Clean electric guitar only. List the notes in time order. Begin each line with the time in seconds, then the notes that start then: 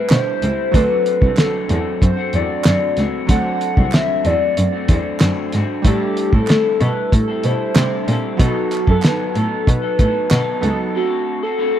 Already playing: C4
0.09 A2 D3 G3 E4
0.43 G3 C4 E4
0.73 D3 A3 C4 F#4
1.21 A3 C4 F#4
1.37 D3 A3 C4 F#4
1.69 D3 A3 C4 F#4
2.17 A3 C4 F#4
2.34 D3 A3 C4 F#4
2.66 D3 A3 C4 F#4
2.98 A3 C4 F#4
3.30 D3 A3 C4 F#4
3.78 A3 C4 F#4
3.92 D3 A3 C4 F#4
4.25 D3 A3 C4 F#4
4.72 A3 C4 F#4
4.87 D3 A3 C4 F#4
5.20 D3 A3 C4 F#4
5.52 D3 C4 F#4
5.85 A2 D3 G3 C4 E4 A4
6.33 G3 C4 E4 A4
6.48 A2 D3 G3 C4 E4 A4
6.80 G3 E4 A4
7.28 G3 C4 E4 A4
7.44 G3 E4 A4
7.76 A2 D3 G3 C4 E4 A4
8.07 G3 C4 E4 A4
8.40 B2 D#3 F#3 B3 D#4 A4
8.87 F#3 B3 D#4 A4
9.03 B2 D#3 F#3 B3 D#4 A4
9.35 F#3 B3 D#4 A4
9.82 F#3 B3 D#4 A4
9.98 F#3 B3 D#4 A4
10.30 B2 D#3 F#3 B3 D#4 A4
10.62 F#3 B3 D#4 A4
10.95 D3 A3 C4 F#4 A4
11.43 C4 F#4 A4
11.58 D3 A3 C4 F#4 A4